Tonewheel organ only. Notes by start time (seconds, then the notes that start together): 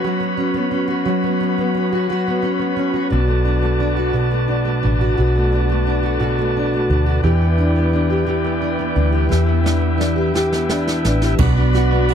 Already playing: F#4 B4 C#5 B5
3.12 D5 A5
7.23 E4 B4 G5
9.32 E5
11.40 F#4 B4 D5 B5